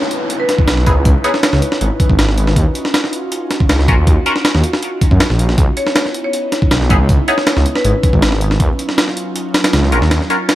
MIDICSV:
0, 0, Header, 1, 7, 480
1, 0, Start_track
1, 0, Tempo, 377358
1, 1339, Time_signature, 4, 2, 24, 8
1, 13420, End_track
2, 0, Start_track
2, 0, Title_t, "Marimba"
2, 0, Program_c, 0, 12
2, 504, Note_on_c, 0, 71, 91
2, 790, Note_off_c, 0, 71, 0
2, 1580, Note_on_c, 0, 73, 92
2, 1944, Note_off_c, 0, 73, 0
2, 7340, Note_on_c, 0, 73, 92
2, 7629, Note_off_c, 0, 73, 0
2, 7941, Note_on_c, 0, 73, 88
2, 8229, Note_off_c, 0, 73, 0
2, 9259, Note_on_c, 0, 73, 97
2, 9549, Note_off_c, 0, 73, 0
2, 9865, Note_on_c, 0, 71, 89
2, 10344, Note_off_c, 0, 71, 0
2, 13420, End_track
3, 0, Start_track
3, 0, Title_t, "Synth stab"
3, 0, Program_c, 1, 62
3, 1101, Note_on_c, 1, 59, 77
3, 1101, Note_on_c, 1, 63, 69
3, 1101, Note_on_c, 1, 64, 67
3, 1101, Note_on_c, 1, 68, 84
3, 1181, Note_off_c, 1, 59, 0
3, 1181, Note_off_c, 1, 63, 0
3, 1181, Note_off_c, 1, 64, 0
3, 1181, Note_off_c, 1, 68, 0
3, 1579, Note_on_c, 1, 59, 98
3, 1579, Note_on_c, 1, 63, 84
3, 1580, Note_on_c, 1, 64, 91
3, 1580, Note_on_c, 1, 68, 105
3, 1660, Note_off_c, 1, 59, 0
3, 1660, Note_off_c, 1, 63, 0
3, 1660, Note_off_c, 1, 64, 0
3, 1660, Note_off_c, 1, 68, 0
3, 4939, Note_on_c, 1, 61, 75
3, 4940, Note_on_c, 1, 65, 70
3, 4940, Note_on_c, 1, 66, 70
3, 4940, Note_on_c, 1, 70, 85
3, 5020, Note_off_c, 1, 61, 0
3, 5020, Note_off_c, 1, 65, 0
3, 5020, Note_off_c, 1, 66, 0
3, 5020, Note_off_c, 1, 70, 0
3, 5418, Note_on_c, 1, 61, 93
3, 5418, Note_on_c, 1, 65, 87
3, 5418, Note_on_c, 1, 66, 90
3, 5418, Note_on_c, 1, 70, 106
3, 5499, Note_off_c, 1, 61, 0
3, 5499, Note_off_c, 1, 65, 0
3, 5499, Note_off_c, 1, 66, 0
3, 5499, Note_off_c, 1, 70, 0
3, 8779, Note_on_c, 1, 59, 76
3, 8779, Note_on_c, 1, 63, 69
3, 8779, Note_on_c, 1, 68, 82
3, 8780, Note_on_c, 1, 64, 67
3, 8860, Note_off_c, 1, 59, 0
3, 8860, Note_off_c, 1, 63, 0
3, 8860, Note_off_c, 1, 64, 0
3, 8860, Note_off_c, 1, 68, 0
3, 9260, Note_on_c, 1, 59, 96
3, 9260, Note_on_c, 1, 63, 89
3, 9260, Note_on_c, 1, 64, 89
3, 9260, Note_on_c, 1, 68, 101
3, 9340, Note_off_c, 1, 59, 0
3, 9340, Note_off_c, 1, 63, 0
3, 9340, Note_off_c, 1, 64, 0
3, 9340, Note_off_c, 1, 68, 0
3, 12621, Note_on_c, 1, 61, 77
3, 12621, Note_on_c, 1, 65, 67
3, 12621, Note_on_c, 1, 66, 70
3, 12622, Note_on_c, 1, 70, 86
3, 12701, Note_off_c, 1, 61, 0
3, 12701, Note_off_c, 1, 65, 0
3, 12701, Note_off_c, 1, 66, 0
3, 12701, Note_off_c, 1, 70, 0
3, 13101, Note_on_c, 1, 70, 106
3, 13102, Note_on_c, 1, 61, 93
3, 13102, Note_on_c, 1, 65, 87
3, 13102, Note_on_c, 1, 66, 90
3, 13181, Note_off_c, 1, 61, 0
3, 13181, Note_off_c, 1, 65, 0
3, 13181, Note_off_c, 1, 66, 0
3, 13181, Note_off_c, 1, 70, 0
3, 13420, End_track
4, 0, Start_track
4, 0, Title_t, "Analog synth pad"
4, 0, Program_c, 2, 89
4, 0, Note_on_c, 2, 61, 83
4, 0, Note_on_c, 2, 63, 78
4, 0, Note_on_c, 2, 64, 78
4, 0, Note_on_c, 2, 71, 91
4, 3223, Note_off_c, 2, 64, 0
4, 3224, Note_off_c, 2, 71, 0
4, 3261, Note_on_c, 2, 65, 76
4, 3261, Note_on_c, 2, 66, 95
4, 7050, Note_off_c, 2, 61, 0
4, 7051, Note_off_c, 2, 63, 0
4, 7062, Note_off_c, 2, 65, 0
4, 7062, Note_off_c, 2, 66, 0
4, 7100, Note_on_c, 2, 64, 93
4, 7101, Note_on_c, 2, 59, 81
4, 7101, Note_on_c, 2, 61, 79
4, 7101, Note_on_c, 2, 63, 79
4, 10901, Note_off_c, 2, 64, 0
4, 10902, Note_off_c, 2, 59, 0
4, 10902, Note_off_c, 2, 63, 0
4, 10943, Note_on_c, 2, 63, 76
4, 10944, Note_on_c, 2, 54, 88
4, 10945, Note_on_c, 2, 65, 92
4, 13420, Note_off_c, 2, 54, 0
4, 13420, Note_off_c, 2, 61, 0
4, 13420, Note_off_c, 2, 63, 0
4, 13420, Note_off_c, 2, 65, 0
4, 13420, End_track
5, 0, Start_track
5, 0, Title_t, "Detuned saw bass"
5, 0, Program_c, 3, 39
5, 859, Note_on_c, 3, 35, 92
5, 1100, Note_on_c, 3, 32, 96
5, 1119, Note_off_c, 3, 35, 0
5, 1211, Note_off_c, 3, 32, 0
5, 1225, Note_on_c, 3, 37, 81
5, 1329, Note_off_c, 3, 37, 0
5, 1340, Note_on_c, 3, 37, 105
5, 1451, Note_off_c, 3, 37, 0
5, 1945, Note_on_c, 3, 37, 90
5, 2049, Note_off_c, 3, 37, 0
5, 2301, Note_on_c, 3, 32, 98
5, 2412, Note_off_c, 3, 32, 0
5, 2665, Note_on_c, 3, 32, 98
5, 3242, Note_off_c, 3, 32, 0
5, 3261, Note_on_c, 3, 39, 101
5, 3372, Note_off_c, 3, 39, 0
5, 4700, Note_on_c, 3, 37, 93
5, 4939, Note_on_c, 3, 34, 99
5, 4958, Note_off_c, 3, 37, 0
5, 5051, Note_off_c, 3, 34, 0
5, 5063, Note_on_c, 3, 39, 81
5, 5168, Note_off_c, 3, 39, 0
5, 5178, Note_on_c, 3, 39, 104
5, 5291, Note_off_c, 3, 39, 0
5, 5782, Note_on_c, 3, 39, 87
5, 5887, Note_off_c, 3, 39, 0
5, 6502, Note_on_c, 3, 42, 93
5, 6607, Note_off_c, 3, 42, 0
5, 6742, Note_on_c, 3, 34, 86
5, 7080, Note_off_c, 3, 34, 0
5, 7097, Note_on_c, 3, 37, 105
5, 7210, Note_off_c, 3, 37, 0
5, 8539, Note_on_c, 3, 35, 90
5, 8779, Note_on_c, 3, 32, 96
5, 8798, Note_off_c, 3, 35, 0
5, 8891, Note_off_c, 3, 32, 0
5, 8901, Note_on_c, 3, 37, 80
5, 9007, Note_off_c, 3, 37, 0
5, 9018, Note_on_c, 3, 37, 103
5, 9130, Note_off_c, 3, 37, 0
5, 9623, Note_on_c, 3, 37, 90
5, 9728, Note_off_c, 3, 37, 0
5, 9979, Note_on_c, 3, 32, 99
5, 10091, Note_off_c, 3, 32, 0
5, 10344, Note_on_c, 3, 32, 107
5, 10921, Note_off_c, 3, 32, 0
5, 10940, Note_on_c, 3, 39, 98
5, 11051, Note_off_c, 3, 39, 0
5, 12381, Note_on_c, 3, 37, 94
5, 12620, Note_on_c, 3, 34, 96
5, 12639, Note_off_c, 3, 37, 0
5, 12732, Note_off_c, 3, 34, 0
5, 12744, Note_on_c, 3, 39, 80
5, 12848, Note_off_c, 3, 39, 0
5, 12859, Note_on_c, 3, 39, 107
5, 12971, Note_off_c, 3, 39, 0
5, 13420, End_track
6, 0, Start_track
6, 0, Title_t, "Downlifter"
6, 0, Program_c, 4, 103
6, 0, Note_on_c, 4, 60, 80
6, 3260, Note_off_c, 4, 60, 0
6, 13420, End_track
7, 0, Start_track
7, 0, Title_t, "Drums"
7, 23, Note_on_c, 9, 38, 38
7, 139, Note_on_c, 9, 42, 70
7, 150, Note_off_c, 9, 38, 0
7, 266, Note_off_c, 9, 42, 0
7, 380, Note_on_c, 9, 42, 84
7, 507, Note_off_c, 9, 42, 0
7, 620, Note_on_c, 9, 38, 50
7, 620, Note_on_c, 9, 42, 71
7, 744, Note_on_c, 9, 36, 97
7, 747, Note_off_c, 9, 38, 0
7, 747, Note_off_c, 9, 42, 0
7, 860, Note_on_c, 9, 38, 122
7, 860, Note_on_c, 9, 42, 91
7, 871, Note_off_c, 9, 36, 0
7, 984, Note_off_c, 9, 38, 0
7, 984, Note_on_c, 9, 38, 42
7, 987, Note_off_c, 9, 42, 0
7, 1100, Note_on_c, 9, 36, 101
7, 1101, Note_on_c, 9, 42, 69
7, 1112, Note_off_c, 9, 38, 0
7, 1227, Note_off_c, 9, 36, 0
7, 1228, Note_off_c, 9, 42, 0
7, 1340, Note_on_c, 9, 36, 109
7, 1340, Note_on_c, 9, 42, 85
7, 1467, Note_off_c, 9, 36, 0
7, 1467, Note_off_c, 9, 42, 0
7, 1580, Note_on_c, 9, 42, 68
7, 1705, Note_on_c, 9, 38, 49
7, 1707, Note_off_c, 9, 42, 0
7, 1821, Note_off_c, 9, 38, 0
7, 1821, Note_on_c, 9, 38, 118
7, 1821, Note_on_c, 9, 42, 88
7, 1945, Note_off_c, 9, 38, 0
7, 1945, Note_on_c, 9, 38, 56
7, 1948, Note_off_c, 9, 42, 0
7, 2062, Note_on_c, 9, 42, 72
7, 2072, Note_off_c, 9, 38, 0
7, 2186, Note_on_c, 9, 38, 55
7, 2190, Note_off_c, 9, 42, 0
7, 2303, Note_on_c, 9, 42, 86
7, 2313, Note_off_c, 9, 38, 0
7, 2430, Note_off_c, 9, 42, 0
7, 2541, Note_on_c, 9, 36, 97
7, 2543, Note_on_c, 9, 42, 71
7, 2665, Note_off_c, 9, 36, 0
7, 2665, Note_on_c, 9, 36, 97
7, 2670, Note_off_c, 9, 42, 0
7, 2782, Note_on_c, 9, 38, 121
7, 2782, Note_on_c, 9, 42, 93
7, 2792, Note_off_c, 9, 36, 0
7, 2907, Note_off_c, 9, 38, 0
7, 2907, Note_on_c, 9, 38, 46
7, 2909, Note_off_c, 9, 42, 0
7, 3022, Note_on_c, 9, 42, 63
7, 3034, Note_off_c, 9, 38, 0
7, 3147, Note_on_c, 9, 38, 51
7, 3149, Note_off_c, 9, 42, 0
7, 3260, Note_on_c, 9, 36, 110
7, 3263, Note_on_c, 9, 42, 84
7, 3274, Note_off_c, 9, 38, 0
7, 3388, Note_off_c, 9, 36, 0
7, 3390, Note_off_c, 9, 42, 0
7, 3500, Note_on_c, 9, 42, 71
7, 3625, Note_on_c, 9, 38, 55
7, 3627, Note_off_c, 9, 42, 0
7, 3741, Note_off_c, 9, 38, 0
7, 3741, Note_on_c, 9, 38, 114
7, 3741, Note_on_c, 9, 42, 88
7, 3866, Note_off_c, 9, 38, 0
7, 3866, Note_on_c, 9, 38, 38
7, 3868, Note_off_c, 9, 42, 0
7, 3980, Note_on_c, 9, 42, 68
7, 3993, Note_off_c, 9, 38, 0
7, 4107, Note_off_c, 9, 42, 0
7, 4220, Note_on_c, 9, 42, 86
7, 4347, Note_off_c, 9, 42, 0
7, 4459, Note_on_c, 9, 38, 54
7, 4459, Note_on_c, 9, 42, 68
7, 4583, Note_on_c, 9, 36, 94
7, 4586, Note_off_c, 9, 38, 0
7, 4586, Note_off_c, 9, 42, 0
7, 4698, Note_on_c, 9, 38, 119
7, 4698, Note_on_c, 9, 42, 91
7, 4710, Note_off_c, 9, 36, 0
7, 4824, Note_off_c, 9, 38, 0
7, 4824, Note_on_c, 9, 38, 41
7, 4825, Note_off_c, 9, 42, 0
7, 4938, Note_on_c, 9, 36, 94
7, 4938, Note_on_c, 9, 42, 67
7, 4951, Note_off_c, 9, 38, 0
7, 5065, Note_off_c, 9, 42, 0
7, 5066, Note_off_c, 9, 36, 0
7, 5178, Note_on_c, 9, 36, 107
7, 5178, Note_on_c, 9, 42, 86
7, 5305, Note_off_c, 9, 42, 0
7, 5306, Note_off_c, 9, 36, 0
7, 5419, Note_on_c, 9, 42, 70
7, 5542, Note_on_c, 9, 38, 50
7, 5546, Note_off_c, 9, 42, 0
7, 5657, Note_off_c, 9, 38, 0
7, 5657, Note_on_c, 9, 38, 122
7, 5657, Note_on_c, 9, 42, 89
7, 5783, Note_off_c, 9, 38, 0
7, 5783, Note_on_c, 9, 38, 56
7, 5785, Note_off_c, 9, 42, 0
7, 5897, Note_on_c, 9, 42, 70
7, 5910, Note_off_c, 9, 38, 0
7, 6022, Note_on_c, 9, 38, 56
7, 6024, Note_off_c, 9, 42, 0
7, 6138, Note_on_c, 9, 42, 86
7, 6149, Note_off_c, 9, 38, 0
7, 6265, Note_off_c, 9, 42, 0
7, 6378, Note_on_c, 9, 36, 95
7, 6379, Note_on_c, 9, 42, 71
7, 6502, Note_off_c, 9, 36, 0
7, 6502, Note_on_c, 9, 36, 98
7, 6506, Note_off_c, 9, 42, 0
7, 6618, Note_on_c, 9, 38, 120
7, 6618, Note_on_c, 9, 42, 88
7, 6629, Note_off_c, 9, 36, 0
7, 6743, Note_off_c, 9, 38, 0
7, 6743, Note_on_c, 9, 38, 46
7, 6745, Note_off_c, 9, 42, 0
7, 6858, Note_on_c, 9, 42, 68
7, 6870, Note_off_c, 9, 38, 0
7, 6981, Note_on_c, 9, 38, 44
7, 6986, Note_off_c, 9, 42, 0
7, 7095, Note_on_c, 9, 42, 85
7, 7097, Note_on_c, 9, 36, 114
7, 7108, Note_off_c, 9, 38, 0
7, 7223, Note_off_c, 9, 42, 0
7, 7224, Note_off_c, 9, 36, 0
7, 7336, Note_on_c, 9, 42, 71
7, 7460, Note_on_c, 9, 38, 54
7, 7463, Note_off_c, 9, 42, 0
7, 7575, Note_off_c, 9, 38, 0
7, 7575, Note_on_c, 9, 38, 120
7, 7575, Note_on_c, 9, 42, 91
7, 7700, Note_off_c, 9, 38, 0
7, 7700, Note_on_c, 9, 38, 37
7, 7703, Note_off_c, 9, 42, 0
7, 7816, Note_on_c, 9, 42, 70
7, 7827, Note_off_c, 9, 38, 0
7, 7943, Note_off_c, 9, 42, 0
7, 8056, Note_on_c, 9, 42, 83
7, 8184, Note_off_c, 9, 42, 0
7, 8296, Note_on_c, 9, 38, 52
7, 8296, Note_on_c, 9, 42, 68
7, 8422, Note_on_c, 9, 36, 98
7, 8423, Note_off_c, 9, 38, 0
7, 8423, Note_off_c, 9, 42, 0
7, 8537, Note_on_c, 9, 38, 115
7, 8537, Note_on_c, 9, 42, 92
7, 8549, Note_off_c, 9, 36, 0
7, 8662, Note_off_c, 9, 38, 0
7, 8662, Note_on_c, 9, 38, 42
7, 8664, Note_off_c, 9, 42, 0
7, 8777, Note_on_c, 9, 42, 70
7, 8779, Note_on_c, 9, 36, 96
7, 8789, Note_off_c, 9, 38, 0
7, 8905, Note_off_c, 9, 42, 0
7, 8906, Note_off_c, 9, 36, 0
7, 9018, Note_on_c, 9, 42, 87
7, 9019, Note_on_c, 9, 36, 114
7, 9146, Note_off_c, 9, 36, 0
7, 9146, Note_off_c, 9, 42, 0
7, 9258, Note_on_c, 9, 42, 67
7, 9383, Note_on_c, 9, 38, 53
7, 9385, Note_off_c, 9, 42, 0
7, 9498, Note_off_c, 9, 38, 0
7, 9498, Note_on_c, 9, 38, 115
7, 9498, Note_on_c, 9, 42, 88
7, 9624, Note_off_c, 9, 38, 0
7, 9624, Note_on_c, 9, 38, 59
7, 9625, Note_off_c, 9, 42, 0
7, 9740, Note_on_c, 9, 42, 72
7, 9751, Note_off_c, 9, 38, 0
7, 9864, Note_on_c, 9, 38, 56
7, 9867, Note_off_c, 9, 42, 0
7, 9979, Note_on_c, 9, 42, 81
7, 9991, Note_off_c, 9, 38, 0
7, 10107, Note_off_c, 9, 42, 0
7, 10220, Note_on_c, 9, 36, 100
7, 10220, Note_on_c, 9, 42, 67
7, 10344, Note_off_c, 9, 36, 0
7, 10344, Note_on_c, 9, 36, 98
7, 10347, Note_off_c, 9, 42, 0
7, 10461, Note_on_c, 9, 38, 122
7, 10461, Note_on_c, 9, 42, 90
7, 10471, Note_off_c, 9, 36, 0
7, 10585, Note_off_c, 9, 38, 0
7, 10585, Note_on_c, 9, 38, 46
7, 10588, Note_off_c, 9, 42, 0
7, 10699, Note_on_c, 9, 42, 65
7, 10713, Note_off_c, 9, 38, 0
7, 10824, Note_on_c, 9, 38, 50
7, 10827, Note_off_c, 9, 42, 0
7, 10939, Note_on_c, 9, 42, 86
7, 10940, Note_on_c, 9, 36, 110
7, 10951, Note_off_c, 9, 38, 0
7, 11066, Note_off_c, 9, 42, 0
7, 11067, Note_off_c, 9, 36, 0
7, 11181, Note_on_c, 9, 42, 70
7, 11304, Note_on_c, 9, 38, 52
7, 11308, Note_off_c, 9, 42, 0
7, 11421, Note_off_c, 9, 38, 0
7, 11421, Note_on_c, 9, 38, 116
7, 11421, Note_on_c, 9, 42, 88
7, 11546, Note_off_c, 9, 38, 0
7, 11546, Note_on_c, 9, 38, 40
7, 11548, Note_off_c, 9, 42, 0
7, 11661, Note_on_c, 9, 42, 71
7, 11673, Note_off_c, 9, 38, 0
7, 11789, Note_off_c, 9, 42, 0
7, 11900, Note_on_c, 9, 42, 85
7, 12028, Note_off_c, 9, 42, 0
7, 12139, Note_on_c, 9, 38, 107
7, 12139, Note_on_c, 9, 42, 80
7, 12264, Note_off_c, 9, 38, 0
7, 12264, Note_off_c, 9, 42, 0
7, 12264, Note_on_c, 9, 38, 108
7, 12264, Note_on_c, 9, 42, 83
7, 12380, Note_off_c, 9, 38, 0
7, 12380, Note_off_c, 9, 42, 0
7, 12380, Note_on_c, 9, 38, 109
7, 12380, Note_on_c, 9, 42, 80
7, 12505, Note_off_c, 9, 38, 0
7, 12505, Note_on_c, 9, 38, 40
7, 12508, Note_off_c, 9, 42, 0
7, 12621, Note_on_c, 9, 42, 65
7, 12633, Note_off_c, 9, 38, 0
7, 12747, Note_on_c, 9, 38, 51
7, 12748, Note_off_c, 9, 42, 0
7, 12862, Note_off_c, 9, 38, 0
7, 12862, Note_on_c, 9, 38, 101
7, 12862, Note_on_c, 9, 42, 77
7, 12988, Note_off_c, 9, 38, 0
7, 12988, Note_on_c, 9, 38, 34
7, 12989, Note_off_c, 9, 42, 0
7, 13103, Note_on_c, 9, 42, 64
7, 13115, Note_off_c, 9, 38, 0
7, 13230, Note_off_c, 9, 42, 0
7, 13340, Note_on_c, 9, 38, 118
7, 13340, Note_on_c, 9, 42, 93
7, 13420, Note_off_c, 9, 38, 0
7, 13420, Note_off_c, 9, 42, 0
7, 13420, End_track
0, 0, End_of_file